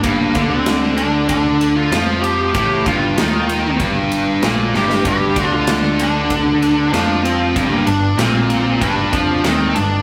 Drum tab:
RD |x-x-x-x-x-x-x-x-|x-x-x-x-x-x-x---|x-x-x-x-x-x-x-x-|x-x-x-x-x-x-x-x-|
SD |----o-------o---|----o-------o-oo|----o-------o---|----o-------o---|
BD |o-o-----o-------|o-o-----o-------|o-o-----o-------|o-------o-o-----|